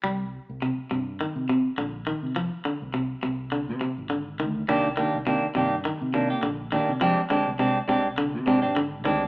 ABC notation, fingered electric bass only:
X:1
M:4/4
L:1/16
Q:"Swing 16ths" 1/4=103
K:Cm
V:1 name="Fingered electric bass" clef=bass
C,,3 C,,2 z G,,3 C,3 B,,,3 C, | C,, z2 C,,3 C,,3 C,2 A,,,3 D,,2 | C,,3 C,,2 z G,,3 C,3 B,,,3 C, | C,, z2 C,,3 C,,3 C,2 A,,,3 D,,2 |]